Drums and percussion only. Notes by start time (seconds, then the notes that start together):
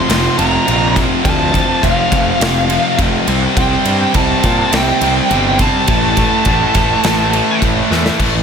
0.10 snare, ride
0.39 ride
0.68 ride
0.96 kick, ride
1.25 kick, ride
1.54 kick, ride
1.83 kick, ride
2.12 kick, ride
2.41 snare, ride
2.70 ride
2.99 kick, ride
3.28 ride
3.57 kick, ride
3.85 ride
4.14 kick, ride
4.43 kick, ride
4.73 snare, ride
5.01 ride
5.31 ride
5.59 kick, ride
5.88 kick, ride
6.17 kick, ride
6.45 kick, ride
6.74 kick, ride
7.04 snare, ride
7.33 ride
7.62 kick, ride
7.92 snare
8.06 snare
8.20 kick, crash